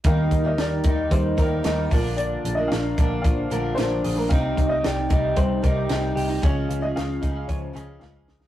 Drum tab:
HH |x-x-x-x-x-x-x-o-|x-x-x-x-x-x-x-o-|x-x-x-x-x-x-x-o-|x-x-x-x-x-x-----|
SD |----o-------o---|----o-------o---|----o-------o---|----o-------o-oo|
BD |o-o---o-o-o---o-|------o-o-------|o-o---o-o-o-----|o-----o-o-------|